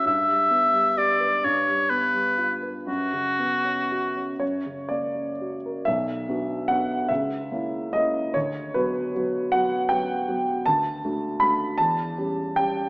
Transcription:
X:1
M:6/8
L:1/16
Q:3/8=48
K:Bm
V:1 name="Oboe"
e4 d2 c2 B2 z2 | F6 z6 | z12 | z12 |
z12 |]
V:2 name="Grand piano"
z12 | z6 c2 d4 | e4 f2 e4 ^d2 | c2 B4 f2 g4 |
a4 b2 a4 g2 |]
V:3 name="Grand piano"
G,, G, B, G, G B G,, G, B, G, =F B | F,, C, B, C F C F,, C, ^A, C F ^A | B,,,2 [B,DF]2 [B,DF]2 C,,2 [^A,CE]2 [A,CE]2 | D,,2 [F,B,F]2 [F,B,F]2 [F,B,F]2 [F,B,F]2 [F,B,F]2 |
D,,2 [A,DF]2 [A,DF]2 E,,2 [G,CG]2 [G,CG]2 |]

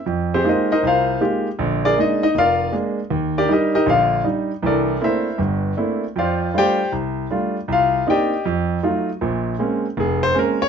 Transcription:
X:1
M:4/4
L:1/8
Q:"Swing" 1/4=158
K:Fm
V:1 name="Grand piano"
z [CGAc] [EBce] [EBce] [FBcf]2 z2 | z [=DAB=d] [Ee] [Ee] [FBdf]2 z2 | z [=DGB=d] [EGBe] [EGBe] [Ff]2 z2 | [=D=AB=d]2 [=EBc=e]2 z4 |
[Fc=df]2 [Gcdg]2 z4 | [Ff]2 [G=deg]2 z4 | z4 A c B d |]
V:2 name="Grand piano"
F,,2 [A,B,EFG] z C,,2 [A,B,EFG] z | [B,,,=D,]2 [A,B,=D] z F,,,2 [A,B,D] z | E,,2 [G,=DE] z [B,,,=D,]2 [G,DE] z | [C,,=E,]2 [=A,B,C=D=E] z [G,,,G,,]2 [A,B,CDE] z |
F,,2 [G,=A,=DF] z C,,2 [G,A,DF] z | C,,2 [B,C=DE] z F,,2 [_G,=A,EF] z | [B,,,B,,]2 [A,B,CD] z F,,,2 [A,B,CD] z |]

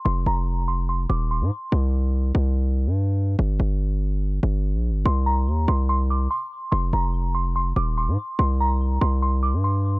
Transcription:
X:1
M:4/4
L:1/16
Q:1/4=144
K:Cm
V:1 name="Synth bell"
c'2 b4 c'2 c'2 d'2 c'4 | z16 | z16 | c'2 b4 c'2 c'2 d'2 c'4 |
c'2 b4 c'2 c'2 d'2 c'4 | c'2 b4 c'2 c'2 d'2 c'4 |]
V:2 name="808-style bass" clef=bass
F,,,2 F,,,8 E,,,3 A,, z2 | C,,6 C,,4- C,, G,,4- G,, | G,,,2 G,,,8 G,,,3 B,,,3/2 G,,,3/2 | C,,4 E,,2 C,,6 z4 |
F,,,2 F,,,8 E,,,3 A,, z2 | C,,6 C,,4- C,, G,,4- G,, |]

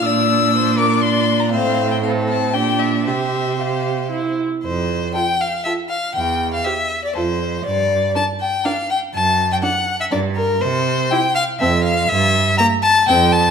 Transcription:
X:1
M:3/4
L:1/16
Q:1/4=121
K:F
V:1 name="Violin"
d4 c2 B2 d4 | c4 A4 G4 | c8- c2 z2 | c4 g2 f2 e2 f2 |
g3 f e3 d c4 | d4 a2 g2 f2 g2 | a3 g ^f3 e d2 B2 | c4 g2 f2 e2 f2 |
e4 b2 a2 g2 a2 |]
V:2 name="Violin"
e'6 d'2 c'3 b | f3 g f2 a2 g2 e2 | e4 f4 z4 | z4 A4 A4 |
z4 c4 A4 | z4 B4 B4 | z4 A4 B4 | z4 G4 A4 |
z4 B4 A4 |]
V:3 name="Viola"
D12 | C4 C4 D4 | G4 G4 E2 z2 | z4 F4 F4 |
z4 G4 F4 | z4 D4 D4 | z4 D4 D4 | z4 E4 C4 |
z4 B,4 C4 |]
V:4 name="Cello" clef=bass
B,,12 | A,,8 B,,4 | C,8- C,2 z2 | F,,4 z8 |
E,,4 z4 F,,4 | G,,4 z8 | ^F,,4 z4 G,,4 | C,4 z4 F,,4 |
G,,4 z4 F,,4 |]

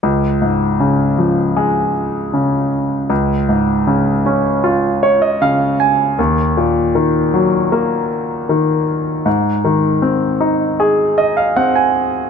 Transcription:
X:1
M:4/4
L:1/16
Q:1/4=78
K:Db
V:1 name="Grand piano"
z16 | z8 z2 d e f2 a2 | z16 | z8 z2 e f g a3 |]
V:2 name="Grand piano" clef=bass
D,,2 A,,2 D,2 F,2 A,4 D,4 | D,,2 A,,2 D,2 D2 F4 D,4 | E,,2 B,,2 E,2 G,2 B,4 E,4 | A,,2 E,2 C2 E2 A4 C4 |]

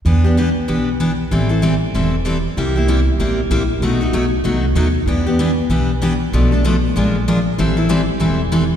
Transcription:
X:1
M:4/4
L:1/8
Q:"Swing" 1/4=191
K:Em
V:1 name="Steel-string acoustic guitar"
[E,B,DG] [B,DG] [E,B,DG] z [E,B,DG] z [E,B,DG] z | [E,G,CEA] [CEA] [E,G,CEA] z [E,G,CEA] z [E,G,CEA] z | [C,G,_B,EG] [B,EG] [C,G,B,EG] z [C,G,B,EG] z [C,G,B,EG] z | [B,,F,A,^DF] [A,DF] [B,,F,A,DF] z [B,,F,A,DF] z [B,,F,A,DF] z |
[E,B,DG] [B,DG] [E,B,DG] z [E,B,DG] z [E,B,DG] z | [B,,=F,A,DA] [A,DA] [B,,F,A,DA] z [^E,^G,D^E^A] z [E,G,DEA] z | [E,G,CEA] [CEA] [E,G,CEA] z [E,G,CEA] z [E,G,CEA] z |]
V:2 name="Upright bass" clef=bass
E,,4 B,,,4 | A,,,4 E,,,4 | C,,4 A,,,2 _B,,,2 | B,,,2 B,,,2 C,,2 ^D,,2 |
E,,4 B,,,4 | B,,,4 ^A,,,4 | A,,,4 E,,,4 |]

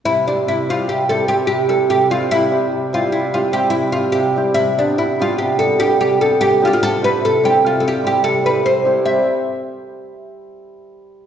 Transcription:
X:1
M:11/8
L:1/16
Q:1/4=147
K:C
V:1 name="Oud"
E2 D2 E2 F2 G2 A2 G2 G2 A2 G2 F2 | E6 F2 E2 F2 G2 E2 F2 G4 | E2 D2 E2 F2 G2 A2 G2 G2 A2 G2 F/2 G/2 F | A2 B2 A2 G2 F3/2 A/2 G2 G2 A2 B2 c4 |
e2 z16 z4 |]
V:2 name="Hammered dulcimer"
z2 [G,CEG]2 z2 [G,CEG]2 z2 [G,CEG]2 [G,CEG]2 z2 [G,CEG]2 z2 [G,CEG]2 | z2 [G,CEG]2 z2 [G,CEG]2 z2 [G,CEG]2 [G,CEG]2 z2 [G,CEG]2 z2 [G,CEG]2 | z2 [G,B,DG]2 z2 [G,B,DG]2 z2 [G,B,DG]2 [G,B,DG]2 z2 [G,B,DG]2 z2 [G,B,DG]2 | z2 [G,CEG]2 z2 [G,CEG]2 z2 [G,CEG]2 [G,CEG]2 z2 [G,CEG]2 z2 [G,CEG]2 |
[G,CEG]2 z16 z4 |]
V:3 name="Hammered dulcimer" clef=bass
C,4 C,4 C,4 z2 C,4 C,4 | C,4 C,4 C,4 z2 C,4 C,4 | C,4 C,4 C,4 z2 C,4 C,4 | C,4 C,4 C,4 z2 C,4 C,4 |
z16 z6 |]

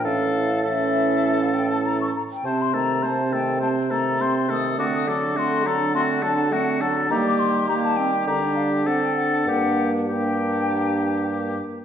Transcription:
X:1
M:4/4
L:1/16
Q:1/4=102
K:Aphr
V:1 name="Flute"
f4 e4- e f g a b ^c' b g | [K:Gm] a c' b2 a2 g2 a2 b2 c'2 e'2 | d' e' d'2 c'2 b2 c'2 a2 ^f2 a2 | b d' c'2 b a g2 b2 f2 ^f g f2 |
^f3 z g8 z4 |]
V:2 name="Oboe"
A4 A8- A2 z2 | [K:Gm] c2 A2 c2 A2 c2 A2 c2 A2 | ^F2 A2 F2 A2 F2 A2 F2 A2 | G4 G4 G4 A4 |
G4 G8- G2 z2 |]
V:3 name="Clarinet"
^C4 C8- C2 z2 | [K:Gm] C2 A,2 C2 A,2 C2 A,2 C2 A,2 | C2 D2 C2 D2 C2 D2 C2 D2 | B,4 B,2 C2 D4 D4 |
D4 D8- D2 z2 |]
V:4 name="French horn" clef=bass
E,4 E,8- E,2 z2 | [K:Gm] C,2 E,2 C,2 E,2 C,2 E,2 C,2 E,2 | A,2 ^F,2 A,2 F,2 A,2 F,2 A,2 F,2 | G,4 G,4 G,4 C4 |
B,4 B,8- B,2 z2 |]
V:5 name="Bassoon" clef=bass
A,,12- A,,2 z2 | [K:Gm] C,16 | D,16 | E,8 D,8 |
G,,12- G,,2 z2 |]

